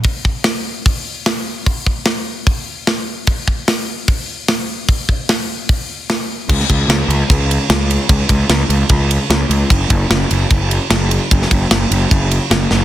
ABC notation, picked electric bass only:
X:1
M:4/4
L:1/8
Q:1/4=149
K:F#m
V:1 name="Picked electric bass" clef=bass
z8 | z8 | z8 | z8 |
C,, C,, C,, C,, C,,2 C,,2 | C,, C,, C,, C,, C,,2 C,, C,, | F,,, F,,, F,,, F,,, F,,,2 F,,,2 | F,,, F,,, F,,, F,,, F,,,2 F,,, F,,, |]